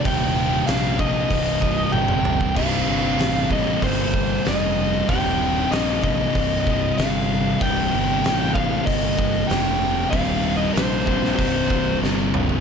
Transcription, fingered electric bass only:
X:1
M:4/4
L:1/8
Q:1/4=95
K:Cm
V:1 name="Fingered electric bass" clef=bass
E,,,2 B,,,2 C,,,2 G,,,2 | C,,, G,,, =A,,,2 G,,,2 F,,,2 | E,,,2 B,,,2 C,,,2 G,,,2 | C,,, G,,, =A,,,2 G,,,2 F,,,2 |
E,,,2 B,,,2 C,,,2 G,,,2 |]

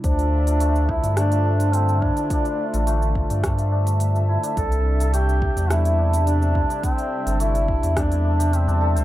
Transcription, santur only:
X:1
M:4/4
L:1/16
Q:1/4=106
K:Dm
V:1 name="Santur"
D z2 A A, z2 d A, F D z2 A E D | D z2 A A, z2 d A, F D z2 A E D | D z2 A A, z2 d A, E D z2 A E D | D z2 A A, z2 d A, E D G z D A c |]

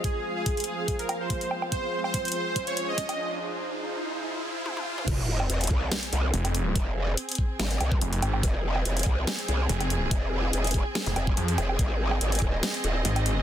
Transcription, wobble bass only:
X:1
M:4/4
L:1/8
Q:"Swing 16ths" 1/4=143
K:Fm
V:1 name="Wobble bass" clef=bass
z8 | z8 | z8 | F,,,2 F,,, C,, z C,, z2 |
F,,,2 z2 A,,, C,, z2 | F,,,2 F,,, C,, z C,, z2 | F,,,2 F,,, z2 F,,, z F,,, | A,,,2 A,,, E,,, z E,,, z2 |]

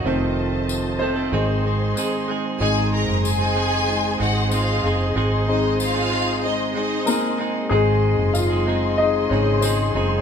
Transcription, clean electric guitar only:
X:1
M:4/4
L:1/16
Q:1/4=94
K:Abmix
V:1 name="Clean electric guitar"
[F,,C,E,=A,C=A]6 [E,A,CA] [E,A,CA] [_A,,E,_A,CE_A]2 [A,CEA]2 [A,CEA]2 [A,CEA]2 | [A,,E,A,CEA]4- [A,,E,A,CEA] [A,CEA] [A,CEA]4 [A,CEA]2 [A,CEA]2 [A,CEA]2 | [A,,E,A,CEA]4- [A,,E,A,CEA] [A,CEA] [A,CEA]4 [A,CEA]2 [A,CEA]2 [A,CEA]2 | [A,,E,A,CEA]4- [A,,E,A,CEA] [A,CEA] [A,CEA]4 [A,CEA]2 [A,CEA]2 [A,CEA]2 |]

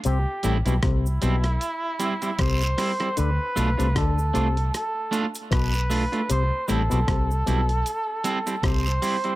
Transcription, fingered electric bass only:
X:1
M:4/4
L:1/16
Q:"Swing 16ths" 1/4=77
K:C
V:1 name="Fingered electric bass" clef=bass
C,, z A,,, B,,, C,,2 B,,,2 z4 C,,2 z2 | D,, z B,,, C,, D,,2 C,,2 z4 B,,,3 z | C,, z A,,, B,,, C,,2 B,,,2 z4 C,,2 z2 |]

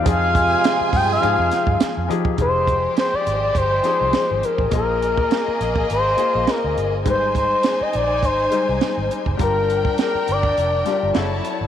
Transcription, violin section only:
X:1
M:4/4
L:1/8
Q:"Swing 16ths" 1/4=103
K:Fdor
V:1 name="Violin section"
[Aa]6- [Aa] z | [A,Gc]8 | [B,Ae]8 | [Eca]8 |
[DBg]6 [_F_d=a]2 |]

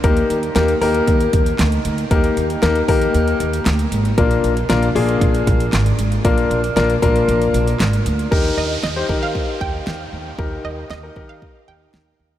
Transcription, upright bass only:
X:1
M:4/4
L:1/16
Q:1/4=116
K:Eb
V:1 name="Upright bass" clef=bass
E,,2 E,,2 E,,2 E,,2 E,,2 E,,2 D,,2 D,,2 | E,,2 E,,2 E,,2 E,,2 E,,2 E,,2 D,,2 A,,,2 | B,,,2 B,,,2 B,,,2 B,,,2 B,,,2 B,,,2 A,,,2 A,,,2 | B,,,2 B,,,2 B,,,2 B,,,2 B,,,2 B,,,2 A,,,2 D,,2 |
E,,2 E,,2 E,,2 E,3 z E,,2 E,,2 E,,2 | E,,2 E,,2 E,,2 E,3 z E,,2 E,,2 E,,2 |]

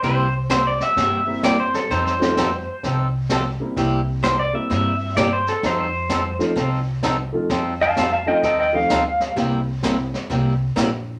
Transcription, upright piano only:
X:1
M:4/4
L:1/8
Q:"Swing" 1/4=129
K:Cmix
V:1 name="Upright piano"
z4 z [G,B,CEG]3 | z [F,A,C_EF] z4 z [G,B,C=EG]- | [G,B,CEG]2 z [G,B,CEG]3 z2 | z3 [F,A,C_EF] z3 [F,A,CEF] |
z3 [F,A,C_EF] z [F,A,CEG] z2 | [G,B,CEG] z [G,B,CEG] z4 z |]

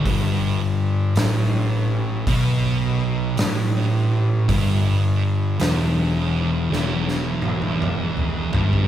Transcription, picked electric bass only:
X:1
M:4/4
L:1/8
Q:"Swing" 1/4=54
K:Edor
V:1 name="Picked electric bass" clef=bass
G,,,2 A,,,2 B,,,2 A,,,2 | G,,,2 E,,,2 E,,,3 G,,, |]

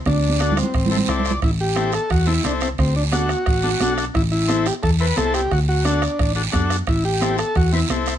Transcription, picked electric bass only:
X:1
M:4/4
L:1/8
Q:1/4=176
K:Ador
V:1 name="Picked electric bass" clef=bass
D,,4 A,,,2 C,,2 | A,,,4 E,,2 C,,2 | D,,4 A,,,2 B,,,2 | A,,,4 E,,2 C,,2 |
D,,4 A,,,2 F,,2 | A,,,4 E,,2 C,,2 |]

